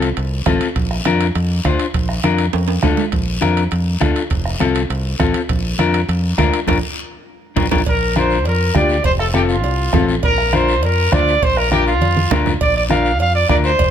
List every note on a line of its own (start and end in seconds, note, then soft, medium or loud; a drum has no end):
0.00 0.11 C2 medium
0.00 high timbale medium
0.00 short guiro medium
0.17 0.41 C2 medium
0.17 high conga soft
0.17 high timbale medium
0.17 long guiro medium
0.46 0.58 A1 loud
0.46 0.67 C4 medium
0.46 0.67 F4 medium
0.46 0.67 A4 medium
0.46 bombo low medium
0.46 bombo rim medium
0.46 high conga medium
0.46 high timbale medium
0.46 low timbale medium
0.46 short guiro medium
0.61 high timbale medium
0.61 short guiro medium
0.76 0.99 A#1 medium
0.76 bombo low medium
0.76 high conga soft
0.76 high timbale medium
0.76 long guiro medium
0.91 bombo rim medium
1.05 1.29 F2 medium
1.05 1.26 D4 medium
1.05 1.27 F4 medium
1.05 1.27 A#4 medium
1.05 bombo rim medium
1.05 high conga medium
1.05 high timbale medium
1.05 short guiro medium
1.21 high timbale medium
1.21 short guiro medium
1.35 1.59 F2 loud
1.35 high conga soft
1.35 high timbale medium
1.35 long guiro medium
1.64 1.77 D2 loud
1.64 1.85 D4 medium
1.64 1.86 F4 medium
1.64 1.86 C5 medium
1.64 bombo low medium
1.64 bombo rim medium
1.64 high conga medium
1.64 high timbale medium
1.64 short guiro medium
1.79 high timbale medium
1.79 short guiro medium
1.94 2.18 A#1 medium
1.94 bombo low medium
1.94 high conga soft
1.94 high timbale medium
1.94 long guiro medium
2.09 bombo rim medium
2.23 2.48 F2 medium
2.23 2.45 D4 medium
2.23 2.45 F4 medium
2.23 2.45 A#4 medium
2.23 bombo rim medium
2.23 high conga medium
2.23 high timbale medium
2.23 short guiro medium
2.38 high timbale medium
2.38 short guiro medium
2.53 2.77 F2 medium
2.53 high conga soft
2.53 high timbale medium
2.53 long guiro medium
2.68 high timbale medium
2.82 2.95 D2 medium
2.82 3.04 D4 medium
2.82 3.04 F4 medium
2.82 3.04 A4 medium
2.82 bombo low medium
2.82 bombo rim medium
2.82 high conga medium
2.82 low timbale medium
2.82 short guiro medium
2.97 low timbale medium
2.97 short guiro medium
3.12 3.36 A#1 loud
3.12 bombo low medium
3.12 high conga soft
3.12 high timbale medium
3.12 long guiro medium
3.41 3.66 F2 medium
3.41 3.62 D4 medium
3.41 3.62 F4 medium
3.41 3.63 A#4 medium
3.41 bombo rim medium
3.41 high conga medium
3.41 high timbale medium
3.41 short guiro medium
3.57 high timbale medium
3.57 short guiro medium
3.71 3.95 F2 medium
3.71 high conga soft
3.71 high timbale medium
3.71 long guiro medium
4.00 4.13 D2 medium
4.00 4.22 D4 medium
4.00 4.22 F4 medium
4.00 4.22 A4 medium
4.00 bombo low medium
4.00 bombo rim medium
4.00 high conga medium
4.00 high timbale medium
4.00 low timbale medium
4.00 short guiro medium
4.16 high timbale medium
4.16 short guiro medium
4.30 4.54 F1 medium
4.30 bombo low medium
4.30 high conga soft
4.30 high timbale medium
4.30 long guiro medium
4.45 bombo rim medium
4.60 4.84 C2 medium
4.60 4.81 C4 medium
4.60 4.81 F4 medium
4.60 4.81 A4 medium
4.60 bombo rim medium
4.60 high conga medium
4.60 high timbale medium
4.60 short guiro medium
4.75 high timbale medium
4.75 short guiro medium
4.90 5.14 C2 medium
4.90 high conga soft
4.90 high timbale medium
4.90 long guiro medium
5.19 5.32 A1 medium
5.19 5.40 C4 medium
5.19 5.40 F4 medium
5.19 5.41 A4 medium
5.19 bombo low medium
5.19 bombo rim medium
5.19 high conga medium
5.19 high timbale medium
5.19 short guiro medium
5.34 high timbale medium
5.34 short guiro medium
5.49 5.73 A#1 medium
5.49 bombo low medium
5.49 high conga soft
5.49 high timbale medium
5.49 long guiro medium
5.79 6.02 F2 medium
5.79 6.00 D4 medium
5.79 6.00 F4 medium
5.79 6.00 A#4 medium
5.79 bombo rim medium
5.79 high conga medium
5.79 high timbale medium
5.79 short guiro medium
5.94 high timbale medium
5.94 short guiro medium
6.08 6.32 F2 medium
6.08 high conga soft
6.08 high timbale medium
6.08 long guiro medium
6.38 6.50 D2 loud
6.38 6.59 D4 medium
6.38 6.59 F4 medium
6.38 6.59 A#4 medium
6.38 bombo low medium
6.38 bombo rim medium
6.38 high conga medium
6.38 high timbale medium
6.38 low timbale medium
6.38 short guiro medium
6.53 high timbale medium
6.53 short guiro medium
6.67 6.79 A#1 medium
6.67 6.77 D4 medium
6.67 6.77 F4 medium
6.67 6.77 A#4 loud
6.67 bombo low medium
6.67 low conga loud
6.67 high timbale medium
6.67 long guiro medium
7.56 7.68 A#1 medium
7.56 7.66 D4 medium
7.56 7.66 F4 medium
7.56 7.66 A#4 medium
7.56 bombo low loud
7.56 low conga loud
7.56 high timbale medium
7.56 long guiro medium
7.71 7.82 A#1 medium
7.71 7.81 D4 medium
7.71 7.81 F4 medium
7.71 7.81 A#4 medium
7.71 bombo low medium
7.71 low conga medium
7.71 high timbale medium
7.71 long guiro medium
7.86 8.46 A#1 medium
7.86 8.15 A#4 medium
7.86 bombo low medium
7.86 cowbell loud
7.86 high conga soft
7.86 long guiro medium
8.16 8.37 D4 medium
8.16 8.37 F4 medium
8.16 8.37 A#4 medium
8.16 8.44 C5 medium
8.16 bombo rim medium
8.16 high conga medium
8.16 short guiro medium
8.31 short guiro medium
8.45 8.69 F2 medium
8.45 8.74 A#4 medium
8.45 cowbell medium
8.45 high conga soft
8.45 long guiro medium
8.74 8.99 D2 medium
8.74 8.96 D4 medium
8.74 8.96 F4 medium
8.74 8.96 G4 medium
8.74 9.03 D5 medium
8.74 bombo low medium
8.74 bombo rim medium
8.74 high conga medium
8.74 low timbale medium
8.74 short guiro medium
8.89 short guiro medium
9.04 9.63 F1 medium
9.04 9.12 C5 loud
9.04 bombo low medium
9.04 cowbell loud
9.04 high conga soft
9.04 long guiro medium
9.19 9.26 A4 medium
9.19 bombo rim medium
9.34 9.55 C4 medium
9.34 9.55 F4 medium
9.34 9.42 G4 medium
9.34 9.55 A4 medium
9.34 bombo rim medium
9.34 high conga medium
9.34 short guiro medium
9.49 10.04 F4 medium
9.49 short guiro medium
9.63 9.87 C2 medium
9.63 cowbell medium
9.63 high conga soft
9.63 long guiro medium
9.93 10.17 A1 medium
9.93 10.14 C4 medium
9.93 10.14 F4 medium
9.93 10.15 A4 medium
9.93 bombo low medium
9.93 bombo rim medium
9.93 high conga medium
9.93 low conga medium
9.93 low timbale medium
9.93 short guiro medium
10.09 short guiro medium
10.23 10.83 A#1 medium
10.23 10.55 A#4 loud
10.23 bombo low medium
10.23 cowbell loud
10.23 high conga soft
10.23 long guiro medium
10.38 bombo rim medium
10.53 10.74 D4 medium
10.53 10.74 F4 medium
10.53 10.74 A#4 medium
10.53 10.83 C5 medium
10.53 bombo rim medium
10.53 high conga medium
10.53 short guiro medium
10.69 short guiro medium
10.83 11.07 F2 medium
10.83 11.14 A#4 medium
10.83 cowbell medium
10.83 high conga soft
10.83 long guiro medium
11.12 11.36 D2 medium
11.12 11.33 D4 medium
11.12 11.33 F4 medium
11.12 11.33 C5 medium
11.12 11.44 D5 loud
11.12 bombo low medium
11.12 bombo rim medium
11.12 high conga medium
11.12 short guiro medium
11.27 short guiro medium
11.42 12.01 A#1 medium
11.42 11.59 C5 loud
11.42 bombo low medium
11.42 cowbell medium
11.42 high conga soft
11.42 long guiro medium
11.57 11.72 A#4 medium
11.57 bombo rim medium
11.71 11.92 D4 medium
11.71 11.92 F4 medium
11.71 11.86 G4 medium
11.71 11.93 A#4 medium
11.71 bombo rim medium
11.71 high conga medium
11.71 short guiro medium
11.86 12.42 F4 medium
11.86 short guiro medium
12.01 12.25 F2 medium
12.01 cowbell medium
12.01 high conga medium
12.01 long guiro medium
12.16 high conga medium
12.31 12.55 D2 medium
12.31 12.52 D4 medium
12.31 12.52 F4 medium
12.31 12.52 A#4 medium
12.31 bombo low medium
12.31 bombo rim medium
12.31 low conga loud
12.31 short guiro medium
12.46 low conga medium
12.46 short guiro medium
12.61 13.20 A#1 medium
12.61 12.75 D5 loud
12.61 bombo low medium
12.61 cowbell loud
12.61 high conga soft
12.61 long guiro medium
12.77 12.83 D5 medium
12.89 13.11 D4 medium
12.89 13.11 F4 medium
12.89 13.11 A#4 medium
12.89 13.18 F5 medium
12.89 bombo rim medium
12.89 high conga medium
12.89 short guiro medium
13.05 short guiro medium
13.19 13.44 F2 medium
13.19 13.34 F5 loud
13.19 cowbell medium
13.19 high conga soft
13.19 long guiro medium
13.35 13.48 D5 medium
13.49 13.73 D2 medium
13.49 13.70 D4 medium
13.49 13.70 F4 medium
13.49 13.70 A#4 medium
13.49 13.56 D5 loud
13.49 bombo low medium
13.49 bombo rim medium
13.49 high conga medium
13.49 short guiro medium
13.64 13.90 C5 loud
13.64 short guiro medium
13.79 13.90 F1 medium
13.79 bombo low medium
13.79 cowbell loud
13.79 high conga soft
13.79 long guiro medium